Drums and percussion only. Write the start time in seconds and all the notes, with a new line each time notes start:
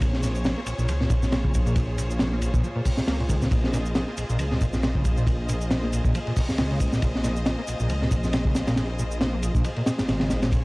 0.01 kick, ride, shaker
0.13 snare
0.23 snare, ride, shaker
0.35 shaker
0.44 snare, ride, shaker
0.66 ride, shaker
0.79 shaker
0.88 ride, shaker
1.01 snare
1.10 kick, ride, shaker
1.22 snare, shaker
1.32 snare, ride, shaker
1.45 kick
1.54 kick, ride, shaker
1.67 shaker
1.76 kick, ride, shaker
1.98 ride, shaker
2.10 shaker
2.19 snare, ride, shaker
2.42 ride, shaker
2.54 kick, shaker
2.64 shaker
2.85 kick, open hi-hat, shaker
2.97 snare, shaker
3.08 snare, ride, shaker
3.20 ride
3.29 kick, ride, shaker
3.42 snare, shaker
3.51 kick, ride, shaker
3.64 snare
3.73 snare, ride, shaker
3.86 shaker
3.95 snare, ride, shaker
4.17 ride, shaker
4.29 shaker
4.39 ride, shaker
4.51 snare
4.61 kick, ride, shaker
4.73 snare, shaker
4.83 snare, ride, shaker
4.95 kick
5.05 kick, ride, shaker
5.17 shaker
5.27 kick, ride, shaker
5.49 ride, shaker
5.61 shaker
5.71 snare, ride, shaker
5.93 ride, shaker
6.04 kick, shaker
6.15 ride, shaker
6.27 ride
6.36 kick, open hi-hat, shaker
6.49 snare, shaker
6.58 snare, ride, shaker
6.71 ride
6.80 kick, ride, shaker
6.92 snare, shaker
7.02 kick, ride, shaker
7.15 snare
7.24 snare, ride, shaker
7.36 shaker
7.46 snare, ride, shaker
7.67 ride, shaker
7.80 shaker
7.89 ride, shaker
8.02 snare
8.11 kick, ride, shaker
8.23 snare, shaker
8.33 snare, ride, shaker
8.45 kick
8.55 snare, ride, shaker
8.67 snare, ride, shaker
8.76 snare, ride, shaker
8.99 shaker
9.11 shaker
9.21 snare, ride, shaker
9.43 ride, shaker
9.55 kick, shaker
9.64 ride, shaker
9.76 ride
9.86 snare, ride, shaker
9.99 snare, ride, shaker
10.08 snare, ride, shaker
10.20 snare, ride
10.30 snare, ride, shaker
10.42 snare, ride, shaker
10.52 kick, ride, shaker